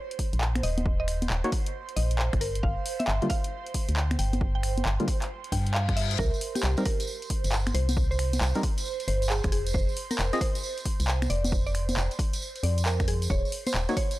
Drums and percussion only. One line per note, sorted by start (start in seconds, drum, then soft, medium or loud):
0.11 closed hi-hat soft
0.19 kick medium
0.19 open hi-hat loud
0.33 closed hi-hat medium
0.41 clap loud
0.55 finger snap medium
0.55 closed hi-hat medium
0.55 high conga medium
0.63 open hi-hat medium
0.78 closed hi-hat medium
0.78 high conga medium
0.86 kick loud
1.08 finger snap soft
1.08 open hi-hat loud
1.22 closed hi-hat medium
1.22 high conga medium
1.30 clap loud
1.44 closed hi-hat soft
1.52 kick loud
1.52 open hi-hat medium
1.66 closed hi-hat medium
1.89 closed hi-hat soft
1.97 open hi-hat loud
2.11 closed hi-hat medium
2.19 clap loud
2.33 finger snap medium
2.33 kick loud
2.33 closed hi-hat medium
2.41 open hi-hat medium
2.55 closed hi-hat medium
2.63 kick loud
2.86 open hi-hat loud
3.00 closed hi-hat medium
3.00 high conga medium
3.08 clap loud
3.22 closed hi-hat soft
3.30 kick loud
3.30 open hi-hat medium
3.44 closed hi-hat medium
3.67 closed hi-hat soft
3.74 kick medium
3.74 open hi-hat loud
3.89 closed hi-hat medium
3.97 clap loud
4.11 finger snap medium
4.11 closed hi-hat medium
4.11 high conga medium
4.19 open hi-hat loud
4.33 closed hi-hat medium
4.33 high conga medium
4.41 kick loud
4.63 finger snap medium
4.63 open hi-hat loud
4.78 closed hi-hat medium
4.78 high conga medium
4.86 clap loud
5.00 closed hi-hat soft
5.08 kick loud
5.08 open hi-hat medium
5.22 clap medium
5.22 closed hi-hat medium
5.44 closed hi-hat soft
5.52 kick medium
5.52 open hi-hat loud
5.67 closed hi-hat medium
5.74 clap loud
5.89 finger snap medium
5.89 kick loud
5.89 closed hi-hat medium
5.97 open hi-hat medium
6.11 closed hi-hat medium
6.19 kick loud
6.19 tambourine medium
6.34 tambourine soft
6.41 open hi-hat loud
6.56 closed hi-hat medium
6.56 tambourine medium
6.56 high conga medium
6.63 clap loud
6.63 tambourine medium
6.77 closed hi-hat soft
6.77 tambourine soft
6.86 kick loud
6.86 open hi-hat loud
7.00 closed hi-hat medium
7.00 tambourine medium
7.07 tambourine medium
7.22 closed hi-hat soft
7.22 tambourine soft
7.30 kick medium
7.30 open hi-hat loud
7.44 closed hi-hat medium
7.44 tambourine medium
7.52 clap loud
7.52 tambourine medium
7.66 finger snap medium
7.66 closed hi-hat medium
7.66 tambourine soft
7.66 high conga medium
7.75 open hi-hat loud
7.89 closed hi-hat medium
7.89 tambourine medium
7.89 high conga medium
7.97 kick loud
7.97 tambourine medium
8.11 tambourine soft
8.19 finger snap medium
8.19 open hi-hat loud
8.33 closed hi-hat medium
8.33 tambourine medium
8.33 high conga medium
8.41 clap loud
8.41 tambourine medium
8.55 closed hi-hat soft
8.55 tambourine soft
8.63 kick loud
8.63 open hi-hat medium
8.78 closed hi-hat medium
8.78 tambourine medium
8.86 tambourine medium
9.00 closed hi-hat soft
9.00 tambourine soft
9.08 open hi-hat loud
9.22 closed hi-hat medium
9.22 tambourine medium
9.30 clap loud
9.30 tambourine medium
9.44 finger snap medium
9.44 kick loud
9.44 closed hi-hat medium
9.44 tambourine soft
9.52 open hi-hat loud
9.67 closed hi-hat medium
9.67 tambourine medium
9.74 kick loud
9.74 tambourine medium
9.89 tambourine soft
9.97 open hi-hat loud
10.11 closed hi-hat medium
10.11 tambourine medium
10.11 high conga medium
10.19 clap loud
10.19 tambourine medium
10.33 closed hi-hat soft
10.33 tambourine soft
10.41 kick loud
10.41 open hi-hat medium
10.55 closed hi-hat medium
10.55 tambourine medium
10.63 tambourine medium
10.78 closed hi-hat soft
10.78 tambourine soft
10.86 kick medium
10.86 open hi-hat loud
11.00 closed hi-hat medium
11.00 tambourine medium
11.08 clap loud
11.08 tambourine medium
11.22 finger snap medium
11.22 closed hi-hat medium
11.22 tambourine soft
11.22 high conga medium
11.30 open hi-hat medium
11.45 closed hi-hat medium
11.45 tambourine medium
11.45 high conga medium
11.52 kick loud
11.52 tambourine medium
11.66 tambourine soft
11.75 finger snap medium
11.75 open hi-hat loud
11.89 closed hi-hat medium
11.89 tambourine medium
11.89 high conga medium
11.97 clap loud
11.97 tambourine medium
12.11 closed hi-hat soft
12.11 tambourine soft
12.19 kick loud
12.19 open hi-hat medium
12.33 closed hi-hat medium
12.33 tambourine medium
12.42 tambourine medium
12.56 closed hi-hat soft
12.56 tambourine soft
12.63 open hi-hat loud
12.78 closed hi-hat medium
12.78 tambourine medium
12.85 clap loud
12.85 tambourine medium
13.00 finger snap medium
13.00 kick loud
13.00 closed hi-hat medium
13.00 tambourine soft
13.08 open hi-hat medium
13.22 closed hi-hat medium
13.22 tambourine medium
13.30 kick loud
13.30 tambourine medium
13.45 tambourine soft
13.52 open hi-hat loud
13.67 closed hi-hat medium
13.67 tambourine medium
13.67 high conga medium
13.74 clap loud
13.74 tambourine medium
13.89 closed hi-hat soft
13.89 tambourine soft
13.97 kick loud
13.97 open hi-hat medium
14.11 closed hi-hat medium
14.11 tambourine medium